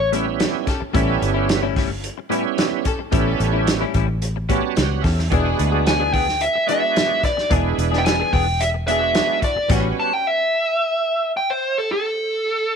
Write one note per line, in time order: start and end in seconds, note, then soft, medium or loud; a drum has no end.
0.00 0.45 A1 medium
0.00 muted clean electric guitar stroke soft
0.12 0.26 A2 medium
0.12 0.67 G3 medium
0.12 0.27 G3 medium
0.12 0.67 B3 medium
0.12 0.67 C#4 medium
0.12 0.27 C#4 medium
0.12 0.67 E4 medium
0.12 0.26 E4 medium
0.12 closed hi-hat medium
0.27 muted clean electric guitar stroke soft
0.40 muted clean electric guitar stroke soft
0.40 snare loud
0.40 closed hi-hat medium
0.67 0.81 C#4 medium
0.67 0.81 G4 medium
0.67 0.81 A4 medium
0.67 muted clean electric guitar stroke soft
0.67 kick medium
0.67 snare soft
0.67 closed hi-hat medium
0.80 muted clean electric guitar stroke soft
0.80 muted fingered electric bass stroke soft
0.93 1.16 A1 loud
0.93 1.10 A2 medium
0.93 1.67 G3 medium
0.93 1.11 G3 medium
0.93 1.67 B3 medium
0.93 1.48 C#4 medium
0.93 1.67 C#4 medium
0.93 1.11 C#4 medium
0.93 1.67 E4 loud
0.93 1.12 E4 medium
0.93 1.49 G4 medium
0.93 1.49 A4 medium
0.93 kick loud
0.93 closed hi-hat medium
1.22 2.09 G1 medium
1.22 muted clean electric guitar stroke soft
1.22 closed hi-hat medium
1.34 1.49 G3 medium
1.34 1.49 C#4 medium
1.34 1.48 E4 medium
1.49 muted clean electric guitar stroke soft
1.49 snare loud
1.49 closed hi-hat medium
1.63 1.75 A2 medium
1.63 1.76 G3 medium
1.63 1.76 C#4 medium
1.63 1.76 E4 medium
1.76 1.90 A2 medium
1.76 1.90 G3 medium
1.76 1.90 C#4 loud
1.76 1.89 E4 medium
1.76 kick medium
1.76 snare soft
1.76 open hi-hat medium
1.90 muted clean electric guitar stroke soft
2.04 closed hi-hat medium
2.18 muted clean electric guitar stroke soft
2.30 2.44 A2 medium
2.30 2.85 G3 medium
2.30 2.45 G3 medium
2.30 2.85 B3 medium
2.30 2.85 C#4 medium
2.30 2.45 C#4 medium
2.30 2.85 E4 medium
2.30 2.44 E4 medium
2.30 closed hi-hat medium
2.45 muted clean electric guitar stroke soft
2.57 muted clean electric guitar stroke soft
2.57 snare loud
2.57 closed hi-hat medium
2.84 2.99 C#4 medium
2.84 2.99 G4 medium
2.84 2.99 A4 loud
2.84 muted clean electric guitar stroke soft
2.84 kick medium
2.84 closed hi-hat medium
2.99 muted clean electric guitar stroke soft
3.11 3.35 A1 medium
3.11 3.29 A2 medium
3.11 3.85 G3 medium
3.11 3.29 G3 medium
3.11 3.85 B3 medium
3.11 3.67 C#4 medium
3.11 3.85 C#4 medium
3.11 3.30 C#4 medium
3.11 3.85 E4 medium
3.11 3.30 E4 loud
3.11 3.67 G4 medium
3.11 3.67 A4 medium
3.11 kick loud
3.11 closed hi-hat medium
3.40 3.84 A1 medium
3.40 muted clean electric guitar stroke soft
3.40 closed hi-hat medium
3.53 3.67 G3 medium
3.53 3.68 C#4 medium
3.53 3.67 E4 medium
3.67 muted clean electric guitar stroke soft
3.67 snare loud
3.67 closed hi-hat medium
3.81 3.93 A2 medium
3.81 3.94 G3 medium
3.81 3.95 C#4 medium
3.81 3.94 E4 medium
3.94 4.60 A1 medium
3.94 4.08 A2 medium
3.94 4.09 G3 medium
3.94 4.08 C#4 medium
3.94 4.07 E4 medium
3.94 kick medium
3.94 closed hi-hat medium
4.08 muted clean electric guitar stroke soft
4.22 closed hi-hat medium
4.36 muted clean electric guitar stroke soft
4.49 4.63 A2 medium
4.49 5.04 G3 medium
4.49 4.64 G3 medium
4.49 5.04 B3 medium
4.49 5.04 C#4 medium
4.49 4.63 C#4 medium
4.49 4.62 E4 medium
4.49 5.04 F#4 medium
4.49 4.75 A5 medium
4.49 kick medium
4.49 closed hi-hat medium
4.64 muted clean electric guitar stroke soft
4.75 5.02 C#2 medium
4.75 4.89 G5 medium
4.75 muted clean electric guitar stroke soft
4.75 snare loud
4.75 closed hi-hat medium
4.89 5.02 F#5 medium
5.01 5.29 E2 medium
5.01 5.17 C#4 medium
5.01 5.18 G4 medium
5.01 5.18 A4 medium
5.01 5.28 E5 medium
5.01 muted clean electric guitar stroke soft
5.01 kick medium
5.01 snare soft
5.01 open hi-hat medium
5.19 muted clean electric guitar stroke soft
5.19 snare soft
5.29 5.54 E1 loud
5.29 5.48 E3 medium
5.29 6.04 G#3 medium
5.29 6.04 B3 medium
5.29 5.85 D4 medium
5.29 6.04 D4 medium
5.29 5.85 E4 medium
5.29 6.04 F#4 medium
5.29 5.86 G#4 loud
5.29 kick loud
5.29 closed hi-hat medium
5.33 5.49 B3 medium
5.33 5.49 D4 medium
5.33 5.50 G#4 medium
5.59 6.47 D2 medium
5.59 muted clean electric guitar stroke soft
5.59 closed hi-hat medium
5.72 5.85 B3 soft
5.72 5.86 D4 soft
5.72 5.86 G#4 medium
5.86 6.13 G#5 medium
5.86 muted clean electric guitar stroke soft
5.86 snare loud
5.86 closed hi-hat medium
6.00 6.12 E3 medium
6.00 6.13 B3 medium
6.00 6.14 D4 medium
6.00 6.13 G#4 medium
6.13 6.27 E3 medium
6.13 6.28 B3 medium
6.13 6.28 D4 medium
6.13 6.27 G#4 medium
6.13 6.42 G5 loud
6.13 kick medium
6.13 open hi-hat medium
6.28 muted clean electric guitar stroke soft
6.28 snare soft
6.40 6.67 E5 medium
6.40 closed hi-hat medium
6.55 muted clean electric guitar stroke soft
6.66 6.83 E3 medium
6.66 7.22 G#3 medium
6.66 7.22 B3 medium
6.66 7.22 D4 medium
6.66 7.22 F#4 medium
6.66 7.24 E5 medium
6.66 closed hi-hat medium
6.70 6.83 B3 medium
6.70 6.83 D4 medium
6.70 6.82 G#4 medium
6.83 muted clean electric guitar stroke soft
6.96 muted clean electric guitar stroke soft
6.96 snare loud
6.96 closed hi-hat medium
7.23 7.37 D4 medium
7.23 7.37 E4 medium
7.23 7.37 B4 medium
7.23 7.49 D5 medium
7.23 muted clean electric guitar stroke soft
7.23 kick medium
7.23 snare soft
7.23 closed hi-hat medium
7.37 muted clean electric guitar stroke soft
7.37 snare soft
7.49 7.73 E1 medium
7.49 7.67 E3 medium
7.49 8.23 G#3 medium
7.49 8.23 B3 medium
7.49 7.67 B3 medium
7.49 8.05 D4 medium
7.49 8.23 D4 medium
7.49 7.68 D4 medium
7.49 8.05 E4 medium
7.49 8.23 E4 medium
7.49 8.05 G#4 medium
7.49 7.68 G#4 medium
7.49 kick loud
7.49 closed hi-hat medium
7.78 8.22 E1 medium
7.78 muted clean electric guitar stroke soft
7.78 closed hi-hat medium
7.92 8.04 B3 soft
7.92 8.05 D4 soft
7.92 8.05 G#4 medium
7.92 snare soft
7.98 8.05 G5 medium
8.04 8.33 G#5 medium
8.04 muted clean electric guitar stroke soft
8.04 snare loud
8.04 closed hi-hat medium
8.20 8.31 E3 medium
8.20 8.32 B3 medium
8.20 8.33 D4 medium
8.20 8.33 G#4 medium
8.33 9.20 E1 medium
8.33 8.46 E3 medium
8.33 8.47 B3 medium
8.33 8.47 D4 medium
8.33 8.46 G#4 medium
8.33 8.61 G5 loud
8.33 kick medium
8.33 open hi-hat medium
8.47 muted clean electric guitar stroke soft
8.60 8.68 E5 medium
8.60 closed hi-hat medium
8.74 muted clean electric guitar stroke soft
8.87 9.01 E3 soft
8.87 9.42 G#3 medium
8.87 9.42 B3 medium
8.87 9.02 B3 medium
8.87 9.42 D4 medium
8.87 9.02 D4 medium
8.87 9.42 F#4 medium
8.87 9.01 G#4 medium
8.87 9.38 E5 medium
8.87 closed hi-hat medium
9.02 muted clean electric guitar stroke soft
9.15 muted clean electric guitar stroke soft
9.15 snare loud
9.15 closed hi-hat medium
9.41 9.55 D4 medium
9.41 9.55 E4 medium
9.41 9.56 F#4 medium
9.41 9.69 D5 medium
9.41 muted clean electric guitar stroke soft
9.41 kick medium
9.41 closed hi-hat medium
9.56 muted fingered electric bass stroke soft
9.56 muted clean electric guitar stroke soft
9.68 9.91 A1 loud
9.68 9.86 A2 medium
9.68 10.13 G3 medium
9.68 9.86 G3 medium
9.68 10.13 B3 medium
9.68 10.13 C#4 medium
9.68 9.87 C#4 medium
9.68 10.13 F#4 medium
9.68 9.87 F#4 medium
9.68 10.14 B4 medium
9.68 kick loud
9.68 closed hi-hat medium
9.68 crash medium
10.00 10.13 A5 medium
10.13 10.27 G5 medium
10.27 11.32 E5 medium
11.37 11.49 G5 medium
11.50 11.75 C5 medium
11.78 11.89 A4 medium
11.92 12.76 A4 loud